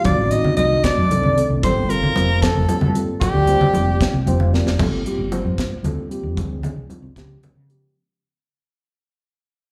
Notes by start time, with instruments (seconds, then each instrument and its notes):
0.03 fretless electric bass D2, reed electric piano D#3 A3 C4 D4 F#4, trombone D4, soprano saxophone D5, kick, closed hi-hat, high conga
0.18 fretless electric bass A1
0.30 reed electric piano D#3 A3 C4 D4 F#4, trombone D#4, soprano saxophone D#5, closed hi-hat
0.44 low conga
0.56 fretless electric bass C2, reed electric piano D#3 A3 C4 D4 F#4, trombone D#4, soprano saxophone D#5, closed hi-hat, high conga
0.84 trombone D4, soprano saxophone D5, kick, snare, closed hi-hat
0.98 fretless electric bass F#2
1.09 fretless electric bass C2, reed electric piano D#3 A3 C4 D4 A4, closed hi-hat, high conga
1.23 low conga
1.35 reed electric piano D#3 A3 C4 D4 A4, closed hi-hat
1.50 fretless electric bass C2
1.62 fretless electric bass G1, reed electric piano G3 A#3 C4 F4 A4, trombone C4, soprano saxophone C5, kick, closed hi-hat, high conga
1.76 fretless electric bass G1
1.88 reed electric piano G3 A#3 C4 F4 A4, trombone A#3, soprano saxophone A#4, closed hi-hat
2.03 low conga
2.15 fretless electric bass F1, reed electric piano G3 A#3 C4 F4 C5, closed hi-hat, high conga
2.42 trombone A3, soprano saxophone A4, kick, snare, closed hi-hat
2.55 fretless electric bass F1
2.68 reed electric piano G3 A#3 C4 F4 A4, closed hi-hat, high conga
2.81 fretless electric bass G2, low conga
2.94 reed electric piano G3 A#3 C4 F4 A4, closed hi-hat
3.21 trombone G3, soprano saxophone G4, kick, closed hi-hat, high conga
3.34 fretless electric bass D2, low conga
3.47 reed electric piano G3 A#3 C4 F4 C5, closed hi-hat
3.61 low conga
3.73 fretless electric bass F1, reed electric piano G3 A#3 C4 F4 G4, closed hi-hat, high conga, low conga
4.01 kick, snare, closed hi-hat, low conga
4.14 fretless electric bass C2
4.26 fretless electric bass F1, reed electric piano G3 A#3 C4 F4 C5 G5, closed hi-hat, high conga
4.40 reed electric piano F5, low conga
4.53 reed electric piano G3 A#3 C4 F4 A#4 D5, snare, low conga
4.66 fretless electric bass F1, snare
4.78 fretless electric bass G1, reed electric piano G3 A#3 C4 F4 A4, kick, crash, high conga
5.06 reed electric piano G3 A#3 C4 F4 G4, closed hi-hat
5.18 fretless electric bass G1, low conga
5.31 reed electric piano G3 A#3 C4 F4 C5, closed hi-hat, high conga, low conga
5.45 fretless electric bass G2
5.58 kick, snare, closed hi-hat
5.72 muted fretless electric bass stroke
5.83 fretless electric bass D2, reed electric piano G3 A#3 C4 F4 A4, closed hi-hat, high conga, low conga
6.10 reed electric piano G3 A#3 C4 F4 G4, muted fretless electric bass stroke, closed hi-hat, low conga
6.23 fretless electric bass F2
6.36 fretless electric bass D2, reed electric piano F3 G#3 C4 D4 G#4, kick, closed hi-hat, high conga
6.62 reed electric piano F3 G#3 C4 D4 G#4, closed hi-hat, low conga
6.76 fretless electric bass C2, low conga
6.89 reed electric piano F3 G#3 C4 D4 F4, closed hi-hat, high conga
7.02 fretless electric bass C2
7.15 fretless electric bass C#2, reed electric piano F3 G#3 B3 C#4 G4, kick, snare, closed hi-hat
7.42 reed electric piano F3 G#3 B3 C#4 A#4, closed hi-hat, high conga, low conga
7.55 fretless electric bass C#3
7.68 reed electric piano F3 G#3 B3 C#4 G4, closed hi-hat